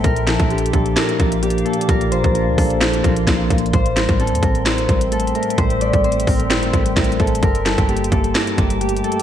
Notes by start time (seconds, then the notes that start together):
Already playing: C5 D5
0.04 A#1 A#2 A#3 A#4 D5 F5 D6, kick, closed hi-hat
0.16 closed hi-hat
0.27 F3 A4, snare, closed hi-hat
0.40 A#1, kick, closed hi-hat
0.50 D4 G4, closed hi-hat
0.58 closed hi-hat
0.66 closed hi-hat
0.73 A#1 D4 A4, kick, closed hi-hat
0.86 closed hi-hat
0.97 A#4, snare, closed hi-hat
1.09 closed hi-hat
1.20 A#1 F3, kick, closed hi-hat
1.32 closed hi-hat
1.43 A#3 G4, closed hi-hat
1.50 closed hi-hat
1.58 closed hi-hat
1.65 A#3 A4, closed hi-hat
1.73 closed hi-hat
1.81 closed hi-hat
1.89 A#1 A#2 A#4 C6, kick, closed hi-hat
2.01 closed hi-hat
2.12 A1 F3 C5, closed hi-hat
2.24 A#1, kick, closed hi-hat
2.34 D4 A#4, closed hi-hat
2.47 D2
2.58 A#1 D4 A4, kick, open hi-hat
2.70 closed hi-hat
2.81 snare, closed hi-hat
2.93 closed hi-hat
3.03 A#1 F3 A#4, kick, closed hi-hat
3.16 closed hi-hat
3.27 A#1 A#3, kick, snare, closed hi-hat
3.50 A#1 A#3, kick, closed hi-hat
3.58 closed hi-hat
3.66 closed hi-hat
3.73 A1 A2 A4 C5 E5 G5, kick, closed hi-hat
3.86 closed hi-hat
3.97 G3 A#4, snare, closed hi-hat
4.09 A1, kick, closed hi-hat
4.20 C4 A4, closed hi-hat
4.27 closed hi-hat
4.32 E2, closed hi-hat
4.43 A1 C4 A#4, kick, closed hi-hat
4.55 closed hi-hat
4.66 C5, snare, closed hi-hat
4.78 closed hi-hat
4.89 A1 G3, kick, closed hi-hat
5.01 closed hi-hat
5.12 A3 A4, closed hi-hat
5.20 closed hi-hat
5.27 closed hi-hat
5.35 A3 A#4, closed hi-hat
5.43 closed hi-hat
5.50 closed hi-hat
5.58 A1 A2 C5, kick, closed hi-hat
5.70 closed hi-hat
5.81 G3 D5, closed hi-hat
5.93 A1, kick, closed hi-hat
6.04 C4 C5, closed hi-hat
6.12 closed hi-hat
6.20 closed hi-hat
6.27 A1 C4 A#4, kick, open hi-hat
6.40 closed hi-hat
6.50 G1 C5, snare, closed hi-hat
6.63 closed hi-hat
6.73 A1 G3, kick, closed hi-hat
6.86 closed hi-hat
6.96 A1 A3 A#4, kick, snare, closed hi-hat
7.04 closed hi-hat
7.12 closed hi-hat
7.20 A1 A3 A4, kick, closed hi-hat
7.27 closed hi-hat
7.35 closed hi-hat
7.43 G1 G2 G4 A#4 G5 A5 D6, kick, closed hi-hat
7.55 closed hi-hat
7.66 G3 A4, snare, closed hi-hat
7.78 G1, kick, closed hi-hat
7.89 A#3 G4, closed hi-hat
7.97 closed hi-hat
8.04 closed hi-hat
8.12 G1 A#3 A4, kick, closed hi-hat
8.24 closed hi-hat
8.35 A#4, snare, closed hi-hat
8.47 closed hi-hat
8.58 G1 G3, kick, closed hi-hat
8.70 closed hi-hat
8.81 A3 G4, closed hi-hat
8.89 closed hi-hat
8.97 closed hi-hat
9.04 A3 A4, closed hi-hat
9.12 closed hi-hat
9.20 closed hi-hat